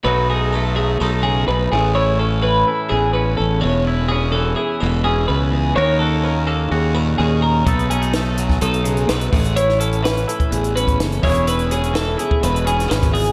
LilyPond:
<<
  \new Staff \with { instrumentName = "Clean electric guitar" } { \time 4/4 \key a \lydian \tempo 4 = 126 b'8 gis'8 a'8 gis'8 a'8 gis'8 b'8 gis'8 | cis''8 a'8 b'8 a'8 gis'8 b'8 a'8 cis''8 | b'8 gis'8 a'8 gis'8 a'8 gis'8 b'8 gis'8 | cis''8 a'8 ais'8 a'8 gis'8 ais'8 gis'8 ais'8 |
b'8 gis'8 a'8 gis'8 a'8 gis'8 b'8 gis'8 | cis''8 a'8 b'8 a'8 gis'8 b'8 a'8 cis''8 | b'8 gis'8 a'8 gis'8 b'8 gis'8 b'8 gis'8 | }
  \new Staff \with { instrumentName = "Clean electric guitar" } { \time 4/4 \key a \lydian << { <fis a dis' fis'>8 dis'8 a4 dis'4. r8 | e'8 cis'4 e'4 cis'4 r8 | e'8 cis'4 e'4 cis'4 r8 | <ais cis' fis' ais'>8 fis'8 cis'4 fis'4 cis'4 |
<fis a dis' a'>8 cis'16 dis'16 a4 dis'4. r8 | e'8 cis'4 e'4 cis'4 <e cis' e' gis'>8 | e'8 cis'4 e'4 cis'4 r8 | } \\ { b,4. fis4 cis8 b,8 a,8~ | a,4 e4 e,4. e,8~ | e,4 e4 b,4. e,8 | dis4. ais4 ais,4. |
b,4. fis4 cis8 b,8 a,8~ | a,4 e4 e,4. e,8~ | e,4 e4 b,4. e,8 | } >> }
  \new Staff \with { instrumentName = "Fingered electric bass" } { \clef bass \time 4/4 \key a \lydian b,,2 b,,4 b,,8 a,,8~ | a,,4. r8 a,,4 a,,8 e,,8~ | e,,4. r8 e,,4 cis,4 | dis,2 dis,4 dis,4 |
b,,2 b,,4 b,,8 a,,8~ | a,,4. r8 a,,4 fis,,8 e,,8~ | e,,4. r8 e,,4 gis,,4 | }
  \new DrumStaff \with { instrumentName = "Drums" } \drummode { \time 4/4 r4 r4 r4 r4 | r4 r4 r4 r4 | r4 r4 r4 r4 | r4 r4 r4 r4 |
<hh bd>16 hh16 hh16 hh16 <hh sn>8 hh16 <bd sn>16 hh16 hh16 hh16 hh16 <hh sn>16 hh16 <hho bd>16 hh16 | hh16 sn16 hh16 hh16 <hh sn>16 hh16 hh16 <hh bd>16 hh16 hh16 hh16 <hh bd>16 <hh sn>16 hh16 <hho bd>16 hh16 | hh16 hh16 hh16 hh16 <hh sn>8 hh16 bd16 hh16 hh16 hh16 <hh sn>16 <hh sn>16 <hh bd sn>16 hho16 hh16 | }
>>